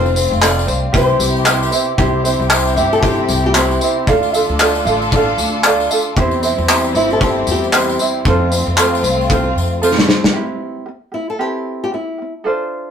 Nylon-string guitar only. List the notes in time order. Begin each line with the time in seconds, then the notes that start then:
Already playing: C5
0.44 D5
0.97 C5
1.47 B4
2.76 E4
2.93 A4
3.03 G4
3.46 G4
3.57 E4
6.96 E4
7.13 A4
7.23 G4
7.51 G4
11.14 E4
11.30 A4
11.41 G4
11.84 G4
11.94 E4